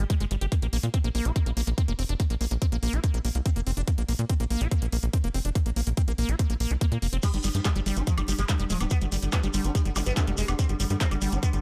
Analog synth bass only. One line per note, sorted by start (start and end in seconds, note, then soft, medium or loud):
0.20 0.26 G1 medium
0.31 0.37 G1 loud
0.41 0.47 G1 medium
0.62 0.68 A#1 medium
0.73 0.79 A#1 loud
0.83 0.89 A#2 medium
1.04 1.10 A#1 medium
1.15 1.21 A#1 medium
1.25 1.31 A#1 medium
1.46 1.52 A#1 medium
1.57 1.63 A#1 loud
1.67 1.73 A#1 medium
1.88 1.94 F1 medium
1.99 2.05 F1 loud
2.09 2.15 F1 medium
2.30 2.36 A#1 medium
2.41 2.47 A#1 loud
2.51 2.57 A#1 medium
2.72 2.78 A#1 medium
2.83 2.89 A#1 loud
2.93 2.99 A#1 medium
3.14 3.20 A#1 medium
3.25 3.31 A#1 loud
3.35 3.41 C2 medium
3.56 3.62 F1 medium
3.67 3.73 F1 loud
3.77 3.83 F1 medium
3.98 4.04 A#1 medium
4.09 4.15 A#1 loud
4.19 4.25 A#2 medium
4.40 4.46 A#1 medium
4.51 4.56 A#1 loud
4.61 4.67 A#1 medium
4.82 4.88 A#1 medium
4.93 4.98 A#1 loud
5.03 5.09 A#1 medium
5.24 5.30 F1 medium
5.34 5.40 F1 loud
5.45 5.51 F1 medium
5.66 5.72 A#1 medium
5.76 5.82 A#1 loud
5.87 5.93 A#1 medium
6.08 6.14 A#1 medium
6.18 6.24 A#1 loud
6.29 6.35 A#1 medium
6.50 6.56 A#1 medium
6.60 6.66 A#1 loud
6.71 6.77 C2 medium
6.92 6.98 A#2 medium
7.02 7.08 F1 loud
7.13 7.19 F1 medium
7.34 7.40 G1 medium
7.44 7.50 G1 loud
7.55 7.61 G2 medium
7.76 7.82 G1 medium
7.86 7.92 G1 loud
7.97 8.03 G1 medium
8.18 8.24 G1 medium
8.28 8.34 G1 loud
8.39 8.45 G1 medium
8.60 8.66 F1 medium
8.70 8.76 D1 loud
8.81 8.87 D1 medium
9.02 9.07 G1 medium
9.12 9.18 G1 loud
9.23 9.28 G1 medium
9.44 9.49 G1 medium
9.54 9.60 G1 loud
9.64 9.70 G1 medium
9.85 9.91 G1 medium
9.96 10.02 G1 loud
10.06 10.12 G#1 medium
10.27 10.33 F1 medium
10.38 10.44 F1 loud
10.48 10.54 F1 medium
10.69 10.75 G1 medium
10.80 10.86 G1 loud
10.90 10.96 G2 medium
11.11 11.17 G1 medium
11.22 11.28 G1 loud
11.32 11.38 G1 medium
11.53 11.59 G1 medium